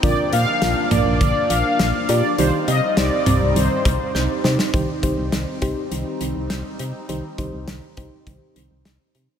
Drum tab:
HH |x-x-x-x-x-x-x-x-|x-x-x-x-x-x-----|x-x-x-x-x-x-x-x-|x-x-x-x-x-x-x-x-|
CB |--------------x-|----------x-----|----------------|----------------|
SD |----o-------o---|----o-------o-oo|----o-------o---|----o-------o---|
T2 |------o---------|------o---------|----------------|----------------|
BD |o-------o-------|----------o-----|o-o---o---------|--o---o-o-------|